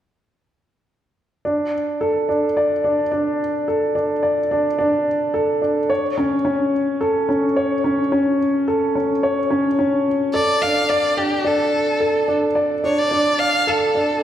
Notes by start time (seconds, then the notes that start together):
1.45 D4
2.01 A4
2.29 D4
2.57 D5
2.84 D4
3.12 D4
3.68 A4
3.95 D4
4.23 D5
4.51 D4
4.79 D4
5.34 A4
5.62 D4
5.90 C#5
6.18 C#4
6.45 C#4
7.01 A4
7.29 C#4
7.56 C#5
7.84 C#4
8.12 C#4
8.68 A4
8.95 C#4
9.23 C#5
9.51 C#4
9.79 C#4
10.34 A4 D5
10.62 D4 F5
10.89 D5
11.17 D4 G4
11.45 D4 A4
12.00 A4
12.28 D4
12.55 D5
12.84 D4 C#5
12.98 D5
13.11 D4
13.39 F5
13.67 A4
13.95 D4